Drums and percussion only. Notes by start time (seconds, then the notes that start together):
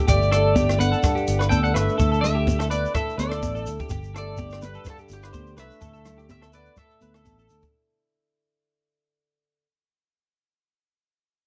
0.08 kick, muted conga, shekere
0.22 shekere
0.32 cross-stick, closed hi-hat
0.56 kick, high conga, shekere
0.69 cross-stick, shekere
0.80 closed hi-hat, muted conga, high conga, shekere
0.93 shekere
1.03 kick, cross-stick, shekere
1.17 shekere
1.27 closed hi-hat, shekere
1.40 cross-stick, shekere
1.51 kick, high conga, shekere
1.65 shekere
1.76 cross-stick, closed hi-hat, shekere
1.89 shekere
1.99 kick, muted conga, shekere
2.13 shekere
2.24 cross-stick, closed hi-hat, low conga, shekere
2.47 kick, high conga, shekere
2.60 cross-stick, shekere
2.71 closed hi-hat, muted conga, shekere
2.85 shekere
2.95 kick, cross-stick, muted conga, shekere
3.09 shekere
3.19 closed hi-hat, muted conga, high conga, shekere
3.32 cross-stick, shekere
3.43 kick, high conga, shekere
3.56 shekere
3.66 closed hi-hat, shekere
3.79 kick, shekere
3.89 kick, muted conga, shekere
4.03 shekere
4.16 cross-stick, closed hi-hat
4.37 kick, high conga, shekere
4.50 cross-stick, shekere
4.62 closed hi-hat, muted conga, high conga, shekere
4.74 shekere
4.85 kick, cross-stick, muted conga, shekere
4.98 shekere
5.09 closed hi-hat, muted conga, shekere
5.22 cross-stick, shekere
5.33 kick, high conga, shekere
5.47 shekere
5.57 cross-stick, closed hi-hat, shekere
5.71 shekere
5.81 kick, muted conga, shekere
5.94 shekere
6.05 cross-stick, closed hi-hat, low conga, shekere
6.19 shekere
6.29 kick, high conga, shekere
6.42 cross-stick
6.53 closed hi-hat, muted conga, shekere
6.66 shekere
6.77 kick, cross-stick, muted conga, low conga, shekere
6.90 shekere
7.01 closed hi-hat, muted conga, high conga, shekere
7.14 cross-stick, shekere
7.25 kick, high conga, shekere
7.39 shekere
7.49 closed hi-hat, shekere
7.62 kick, shekere